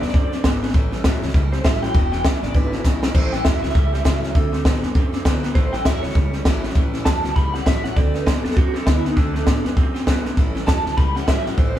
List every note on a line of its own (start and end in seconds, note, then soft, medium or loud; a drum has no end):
0.01 0.12 F#2 medium
0.01 0.12 D3 medium
0.01 0.14 A3 medium
0.01 0.13 B3 medium
0.01 0.14 C4 medium
0.01 0.14 F#4 medium
0.01 0.13 D5 medium
0.01 snare soft
0.08 snare soft
0.13 0.39 F#2 medium
0.13 0.30 D3 medium
0.13 0.32 D3 medium
0.13 0.33 A3 medium
0.13 0.30 C4 loud
0.13 0.32 C4 medium
0.13 0.31 F#4 medium
0.13 0.43 D5 medium
0.13 kick loud
0.13 snare soft
0.31 0.42 D3 medium
0.31 0.43 A3 medium
0.31 0.43 C4 medium
0.31 0.44 C4 medium
0.31 0.44 F#4 medium
0.31 snare soft
0.43 0.70 G#1 medium
0.43 0.60 D3 medium
0.43 0.62 D3 medium
0.43 0.62 A3 medium
0.43 0.60 B3 loud
0.43 0.61 C4 medium
0.43 0.60 F#4 medium
0.43 kick medium
0.43 snare loud
0.43 hi-hat pedal medium
0.62 0.73 D3 medium
0.62 0.74 A3 medium
0.62 0.73 B3 medium
0.62 0.74 C4 medium
0.62 0.74 F#4 medium
0.62 snare soft
0.69 snare soft
0.74 1.00 A1 loud
0.74 0.90 A2 medium
0.74 0.92 A2 medium
0.74 0.91 E3 medium
0.74 0.92 E3 medium
0.74 0.93 G3 medium
0.74 0.92 C#4 medium
0.74 0.91 E4 medium
0.74 kick loud
0.74 snare soft
0.92 1.03 A2 medium
0.92 1.03 E3 medium
0.92 1.04 G3 medium
0.92 1.05 C#4 medium
0.92 1.04 E4 medium
0.92 snare soft
1.04 1.20 E2 medium
1.04 1.20 A2 loud
1.04 1.23 A2 loud
1.04 1.23 E3 loud
1.04 1.21 F#3 medium
1.04 1.23 G3 loud
1.04 1.22 C#4 loud
1.04 1.21 E4 loud
1.04 kick medium
1.04 snare loud
1.04 hi-hat pedal medium
1.22 1.32 C#2 medium
1.22 1.33 A2 medium
1.22 1.33 F#3 medium
1.22 1.34 G3 medium
1.22 1.34 C#4 medium
1.22 1.34 E4 medium
1.22 snare soft
1.28 snare soft
1.34 1.60 C#2 loud
1.34 1.51 A2 medium
1.34 1.52 E3 medium
1.34 1.51 G3 loud
1.34 1.53 G3 medium
1.34 1.52 C#4 medium
1.34 1.51 E4 medium
1.34 kick loud
1.34 snare soft
1.52 1.63 A2 medium
1.52 1.63 G3 medium
1.52 1.64 G3 soft
1.52 1.64 C#4 medium
1.52 1.64 E4 medium
1.52 1.64 C5 loud
1.52 snare soft
1.64 1.90 A1 medium
1.64 1.82 A2 medium
1.64 1.81 A2 medium
1.64 1.83 E3 medium
1.64 1.81 F#3 loud
1.64 1.83 G3 medium
1.64 1.82 C#4 loud
1.64 1.81 E4 loud
1.64 1.82 E5 loud
1.64 kick loud
1.64 snare loud
1.64 hi-hat pedal medium
1.82 1.93 A2 medium
1.82 1.93 F#3 medium
1.82 1.95 G3 medium
1.82 1.95 C#4 soft
1.82 1.94 E4 medium
1.82 2.11 G5 loud
1.82 snare soft
1.94 2.20 E1 loud
1.94 2.11 E2 medium
1.94 2.12 E2 medium
1.94 2.13 B2 medium
1.94 2.11 B2 loud
1.94 2.13 E3 medium
1.94 2.12 G#3 medium
1.94 2.12 D4 medium
1.94 2.11 E4 medium
1.94 kick loud
1.94 snare soft
2.12 2.22 E2 medium
2.12 2.23 B2 medium
2.12 2.24 E3 medium
2.12 2.24 G#3 medium
2.12 2.25 D4 medium
2.12 2.24 E4 medium
2.12 2.25 G5 medium
2.12 snare soft
2.24 2.40 B1 loud
2.24 2.40 E2 medium
2.24 2.43 E2 medium
2.24 2.43 B2 medium
2.24 2.41 C#3 loud
2.24 2.43 E3 loud
2.24 2.43 G#3 medium
2.24 2.42 D4 loud
2.24 2.41 E4 loud
2.24 2.42 E5 medium
2.24 kick medium
2.24 snare loud
2.24 hi-hat pedal medium
2.42 2.53 G#1 medium
2.42 2.53 E2 medium
2.42 2.53 C#3 medium
2.42 2.53 E3 medium
2.42 2.54 G#3 medium
2.42 2.54 D4 medium
2.42 2.55 E4 medium
2.42 2.55 D5 medium
2.42 snare soft
2.54 2.80 G#1 loud
2.54 2.71 E2 medium
2.54 2.71 D3 medium
2.54 2.72 E3 medium
2.54 2.73 G#3 medium
2.54 2.72 D4 medium
2.54 2.71 E4 medium
2.54 2.84 B4 loud
2.54 kick loud
2.54 snare soft
2.72 2.83 E2 medium
2.72 2.83 D3 medium
2.72 2.84 E3 soft
2.72 2.84 G#3 medium
2.72 2.84 D4 medium
2.72 2.84 E4 medium
2.72 snare soft
2.84 3.10 B1 loud
2.84 3.01 E2 medium
2.84 3.03 E2 medium
2.84 3.03 B2 medium
2.84 3.01 C#3 loud
2.84 3.03 E3 loud
2.84 3.03 G#3 loud
2.84 3.02 D4 loud
2.84 3.01 E4 loud
2.84 kick medium
2.84 snare medium
2.84 hi-hat pedal loud
3.02 3.13 E2 medium
3.02 3.14 C#3 medium
3.02 3.14 E3 medium
3.02 3.15 G#3 medium
3.02 3.15 D4 medium
3.02 3.14 E4 medium
3.02 snare loud
3.14 3.40 A1 loud
3.14 3.31 A2 medium
3.14 3.33 A2 medium
3.14 3.33 E3 medium
3.14 3.31 E3 medium
3.14 3.33 G3 medium
3.14 3.33 C#4 medium
3.14 3.32 E4 medium
3.14 3.32 C5 medium
3.14 kick loud
3.14 snare soft
3.14 crash loud
3.33 3.43 A2 medium
3.33 3.44 E3 medium
3.33 3.45 G3 medium
3.33 3.45 C#4 medium
3.33 3.45 E4 medium
3.33 3.44 G5 loud
3.33 snare soft
3.44 3.60 E2 medium
3.44 3.61 A2 medium
3.44 3.63 A2 medium
3.44 3.63 E3 medium
3.44 3.61 F#3 medium
3.44 3.64 G3 medium
3.44 3.62 C#4 medium
3.44 3.61 E4 loud
3.44 3.61 E5 medium
3.44 kick medium
3.44 snare loud
3.44 hi-hat pedal medium
3.62 3.73 C#2 medium
3.62 3.73 A2 medium
3.62 3.74 F#3 medium
3.62 3.74 G3 soft
3.62 3.75 C#4 soft
3.62 3.75 E4 medium
3.62 4.50 E5 loud
3.62 snare soft
3.70 snare soft
3.74 4.00 C#2 medium
3.74 3.91 A2 medium
3.74 3.93 E3 medium
3.74 3.91 G3 loud
3.74 3.93 G3 medium
3.74 3.93 C#4 medium
3.74 3.91 E4 medium
3.74 kick loud
3.74 snare soft
3.93 4.04 A2 medium
3.93 4.04 G3 medium
3.93 4.04 G3 soft
3.93 4.04 C#4 medium
3.93 4.05 E4 medium
3.93 snare soft
4.04 4.30 C#2 medium
4.04 4.23 A2 medium
4.04 4.21 A2 medium
4.04 4.23 E3 medium
4.04 4.21 F#3 medium
4.04 4.23 G3 medium
4.04 4.23 C#4 loud
4.04 4.22 E4 loud
4.04 kick medium
4.04 snare loud
4.04 hi-hat pedal medium
4.23 4.34 A2 medium
4.23 4.34 F#3 medium
4.23 4.35 G3 medium
4.23 4.35 C#4 medium
4.23 4.35 E4 medium
4.23 snare soft
4.35 4.60 D2 loud
4.35 4.51 D3 medium
4.35 4.53 D3 medium
4.35 4.51 A3 medium
4.35 4.53 A3 medium
4.35 4.53 C4 medium
4.35 4.52 F#4 loud
4.35 kick loud
4.35 snare soft
4.52 4.63 D3 medium
4.52 4.64 A3 medium
4.52 4.65 C4 medium
4.52 4.65 F#4 medium
4.52 snare soft
4.64 4.80 A2 medium
4.64 4.81 D3 medium
4.64 4.83 D3 medium
4.64 4.84 A3 loud
4.64 4.81 B3 loud
4.64 4.83 C4 medium
4.64 4.81 F#4 loud
4.64 kick medium
4.64 snare loud
4.64 hi-hat pedal medium
4.82 4.93 F#2 medium
4.82 4.94 D3 medium
4.82 4.94 A3 medium
4.82 4.94 B3 medium
4.82 4.95 C4 medium
4.82 4.95 F#4 medium
4.82 snare soft
4.95 5.21 F#2 medium
4.95 5.13 D3 medium
4.95 5.12 D3 medium
4.95 5.13 A3 medium
4.95 5.12 C4 medium
4.95 5.11 F#4 medium
4.95 kick loud
4.95 snare soft
5.12 5.24 D3 medium
5.12 5.24 A3 medium
5.12 5.25 C4 medium
5.12 5.24 C4 medium
5.12 5.25 F#4 medium
5.12 snare soft
5.25 5.51 D2 medium
5.25 5.43 D3 medium
5.25 5.41 D3 medium
5.25 5.43 A3 loud
5.25 5.42 B3 loud
5.25 5.43 C4 loud
5.25 5.42 F#4 loud
5.25 kick medium
5.25 snare loud
5.25 hi-hat pedal medium
5.43 5.54 D3 medium
5.43 5.55 A3 soft
5.43 5.54 B3 medium
5.43 5.56 C4 medium
5.43 5.55 F#4 medium
5.43 snare soft
5.55 5.81 A1 medium
5.55 5.73 A2 medium
5.55 5.72 A2 medium
5.55 5.73 E3 medium
5.55 5.72 E3 medium
5.55 5.74 G3 medium
5.55 5.73 C#4 medium
5.55 5.72 E4 medium
5.55 5.73 C5 medium
5.55 kick loud
5.55 snare soft
5.73 5.84 A2 medium
5.73 5.84 E3 medium
5.73 5.84 G3 medium
5.73 5.85 C#4 medium
5.73 5.85 E4 medium
5.73 5.85 G5 loud
5.73 snare soft
5.85 6.01 E2 medium
5.85 6.03 A2 medium
5.85 6.02 A2 medium
5.85 6.03 E3 medium
5.85 6.02 F#3 loud
5.85 6.04 G3 medium
5.85 6.03 C#4 loud
5.85 6.02 E4 medium
5.85 6.03 E5 medium
5.85 kick medium
5.85 snare loud
5.85 hi-hat pedal medium
6.03 6.13 C#2 medium
6.03 6.14 A2 medium
6.03 6.14 F#3 medium
6.03 6.14 G3 medium
6.03 6.15 C#4 medium
6.03 6.15 E4 medium
6.03 6.91 C#5 medium
6.03 snare soft
6.09 snare soft
6.14 6.41 C#2 medium
6.14 6.32 A2 medium
6.14 6.33 E3 medium
6.14 6.34 G3 medium
6.14 6.32 G3 medium
6.14 6.33 C#4 medium
6.14 6.32 E4 medium
6.14 kick loud
6.14 snare soft
6.33 6.44 A2 medium
6.33 6.45 G3 medium
6.33 6.45 G3 soft
6.33 6.45 C#4 soft
6.33 6.45 E4 medium
6.33 snare soft
6.45 6.71 A1 medium
6.45 6.64 A2 medium
6.45 6.62 A2 medium
6.45 6.64 E3 loud
6.45 6.62 F#3 loud
6.45 6.64 G3 loud
6.45 6.63 C#4 loud
6.45 6.62 E4 loud
6.45 kick medium
6.45 snare loud
6.45 hi-hat pedal medium
6.63 6.74 A2 medium
6.63 6.74 F#3 medium
6.63 6.74 G3 soft
6.63 6.75 C#4 medium
6.63 6.75 E4 medium
6.63 snare soft
6.70 snare soft
6.75 7.01 A1 loud
6.75 6.93 A2 medium
6.75 6.92 A2 medium
6.75 6.94 E3 medium
6.75 6.92 E3 loud
6.75 6.94 G3 loud
6.75 6.93 C#4 loud
6.75 6.92 E4 medium
6.75 kick loud
6.75 snare soft
6.94 7.04 A2 medium
6.94 7.05 E3 medium
6.94 7.05 G3 medium
6.94 7.06 C#4 medium
6.94 7.06 E4 medium
6.94 snare soft
7.05 7.21 E2 medium
7.05 7.22 A2 medium
7.05 7.24 A2 medium
7.05 7.24 E3 medium
7.05 7.22 F#3 medium
7.05 7.24 G3 medium
7.05 7.24 C#4 medium
7.05 7.22 E4 medium
7.05 7.35 A5 loud
7.05 kick medium
7.05 snare loud
7.05 hi-hat pedal medium
7.24 7.34 C#2 medium
7.24 7.34 A2 medium
7.24 7.35 F#3 medium
7.24 7.35 G3 soft
7.24 7.36 C#4 medium
7.24 7.36 E4 medium
7.24 snare soft
7.35 7.61 C#2 medium
7.35 7.52 A2 medium
7.35 7.54 E3 medium
7.35 7.52 G3 loud
7.35 7.54 G3 medium
7.35 7.54 C#4 medium
7.35 7.53 E4 medium
7.35 7.53 B5 medium
7.35 kick loud
7.35 snare soft
7.54 7.65 A2 medium
7.54 7.65 G3 medium
7.54 7.65 G3 soft
7.54 7.65 C#4 medium
7.54 7.66 E4 medium
7.54 7.65 F#5 loud
7.54 snare soft
7.66 7.91 A1 medium
7.66 7.84 A2 medium
7.66 7.82 A2 medium
7.66 7.84 E3 medium
7.66 7.82 F#3 loud
7.66 7.84 G3 medium
7.66 7.84 C#4 medium
7.66 7.83 E4 medium
7.66 7.83 E5 medium
7.66 kick medium
7.66 snare loud
7.66 hi-hat pedal medium
7.84 7.95 A2 medium
7.84 7.95 F#3 medium
7.84 7.97 G3 soft
7.84 7.96 C#4 soft
7.84 7.96 E4 medium
7.84 7.96 F#5 loud
7.84 snare soft
7.96 8.22 D2 medium
7.96 8.12 D3 medium
7.96 8.14 D3 medium
7.96 8.13 A3 medium
7.96 8.15 A3 medium
7.96 8.14 C4 medium
7.96 8.13 F#4 medium
7.96 8.14 D5 medium
7.96 kick loud
7.96 snare soft
8.14 8.25 D3 medium
8.14 8.25 A3 medium
8.14 8.26 C4 medium
8.14 8.26 F#4 medium
8.14 8.26 B4 medium
8.14 snare soft
8.26 8.42 A2 medium
8.26 8.44 D3 medium
8.26 8.42 D3 medium
8.26 8.45 A3 medium
8.26 8.43 B3 loud
8.26 8.44 C4 medium
8.26 8.43 F#4 medium
8.26 8.44 D5 medium
8.26 kick medium
8.26 snare loud
8.26 hi-hat pedal medium
8.44 8.55 F#2 medium
8.44 8.55 D3 medium
8.44 8.55 A3 soft
8.44 8.55 B3 medium
8.44 8.56 C4 medium
8.44 8.56 F#4 medium
8.44 8.56 A4 medium
8.44 snare soft
8.51 snare soft
8.56 8.82 F#2 medium
8.56 8.74 D3 medium
8.56 8.72 D3 medium
8.56 8.75 A3 medium
8.56 8.73 C4 loud
8.56 8.74 C4 medium
8.56 8.74 F#4 medium
8.56 8.73 F#4 medium
8.56 kick loud
8.56 snare soft
8.74 8.85 D3 medium
8.74 8.86 A3 soft
8.74 8.85 C4 medium
8.74 8.87 C4 medium
8.74 8.86 F#4 medium
8.74 8.86 A4 loud
8.74 snare soft
8.86 9.12 D2 medium
8.86 9.03 D3 medium
8.86 9.05 D3 medium
8.86 9.05 A3 medium
8.86 9.03 B3 loud
8.86 9.04 C4 medium
8.86 9.04 E4 medium
8.86 9.03 F#4 medium
8.86 kick medium
8.86 snare loud
8.86 hi-hat pedal medium
9.04 9.15 D3 medium
9.04 9.16 A3 soft
9.04 9.15 B3 medium
9.04 9.16 C4 medium
9.04 9.16 D#4 medium
9.04 9.16 F#4 medium
9.04 snare soft
9.16 9.42 D2 loud
9.16 9.35 D3 medium
9.16 9.33 D3 medium
9.16 9.35 A3 medium
9.16 9.33 A3 loud
9.16 9.35 C4 medium
9.16 9.33 D4 medium
9.16 9.34 F#4 medium
9.16 kick loud
9.16 snare soft
9.34 9.45 D3 medium
9.34 9.45 A3 medium
9.34 9.46 A3 medium
9.34 9.46 C4 soft
9.34 9.64 D4 loud
9.34 9.47 F#4 medium
9.34 snare soft
9.46 9.62 A2 medium
9.46 9.63 D3 medium
9.46 9.65 D3 medium
9.46 9.65 A3 medium
9.46 9.63 B3 medium
9.46 9.64 C4 medium
9.46 9.63 F#4 medium
9.46 kick medium
9.46 snare loud
9.46 hi-hat pedal medium
9.64 9.75 F#2 medium
9.64 9.75 D3 medium
9.64 9.76 A3 medium
9.64 9.76 B3 medium
9.64 9.77 C4 medium
9.64 9.76 F#4 medium
9.64 snare soft
9.76 10.02 F#2 loud
9.76 9.93 D3 medium
9.76 9.95 D3 medium
9.76 9.95 A3 medium
9.76 9.93 C4 loud
9.76 9.95 C4 medium
9.76 9.93 F#4 medium
9.76 kick loud
9.76 snare soft
9.94 10.05 D3 medium
9.94 10.06 A3 medium
9.94 10.05 C4 medium
9.94 10.07 C4 medium
9.94 10.07 F#4 medium
9.94 snare soft
10.06 10.32 B1 medium
10.06 10.23 D3 medium
10.06 10.25 D3 medium
10.06 10.25 A3 loud
10.06 10.23 B3 loud
10.06 10.25 C4 loud
10.06 10.24 F#4 loud
10.06 kick medium
10.06 snare loud
10.06 hi-hat pedal medium
10.24 10.35 D3 medium
10.24 10.37 A3 medium
10.24 10.36 B3 medium
10.24 10.37 C4 medium
10.24 10.37 F#4 medium
10.24 snare soft
10.37 10.63 A1 medium
10.37 10.53 A2 medium
10.37 10.55 A2 medium
10.37 10.53 E3 medium
10.37 10.55 E3 medium
10.37 10.56 G3 medium
10.37 10.55 C#4 loud
10.37 10.54 E4 medium
10.37 kick loud
10.37 snare soft
10.55 10.66 A2 medium
10.55 10.66 E3 medium
10.55 10.66 G3 medium
10.55 10.66 C#4 medium
10.55 10.67 E4 medium
10.55 snare soft
10.66 10.83 E2 medium
10.66 10.85 A2 medium
10.66 10.83 A2 medium
10.66 10.85 E3 medium
10.66 10.84 F#3 loud
10.66 10.85 G3 medium
10.66 10.84 C#4 medium
10.66 10.83 E4 medium
10.66 10.96 A5 loud
10.66 kick medium
10.66 snare loud
10.66 hi-hat pedal medium
10.85 10.95 C#2 medium
10.85 10.96 A2 medium
10.85 10.96 F#3 medium
10.85 10.96 G3 soft
10.85 10.97 C#4 medium
10.85 10.97 E4 medium
10.85 snare soft
10.97 11.23 C#2 loud
10.97 11.13 A2 medium
10.97 11.15 E3 medium
10.97 11.15 G3 medium
10.97 11.14 G3 medium
10.97 11.15 C#4 medium
10.97 11.14 E4 medium
10.97 11.15 B5 loud
10.97 kick loud
10.97 snare soft
11.15 11.25 A2 medium
11.15 11.26 G3 medium
11.15 11.27 G3 soft
11.15 11.27 C#4 medium
11.15 11.27 E4 medium
11.15 11.27 F#5 loud
11.15 snare soft
11.27 11.53 A1 medium
11.27 11.43 A2 loud
11.27 11.46 A2 medium
11.27 11.46 E3 medium
11.27 11.44 F#3 loud
11.27 11.46 G3 medium
11.27 11.46 C#4 medium
11.27 11.44 E4 medium
11.27 11.47 E5 loud
11.27 kick medium
11.27 snare loud
11.27 hi-hat pedal medium
11.45 11.55 A2 medium
11.45 11.56 F#3 medium
11.45 11.57 G3 soft
11.45 11.57 C#4 medium
11.45 11.58 E4 medium
11.45 11.58 F#5 medium
11.45 snare soft
11.57 11.79 A1 medium
11.57 11.74 A2 medium
11.57 11.76 A2 medium
11.57 11.74 E3 medium
11.57 11.76 E3 medium
11.57 11.76 G3 medium
11.57 11.75 C#4 medium
11.57 11.74 E4 medium
11.57 11.76 C5 medium
11.57 kick loud
11.57 snare soft
11.75 11.79 A2 medium
11.75 11.79 E3 medium
11.75 11.79 E4 medium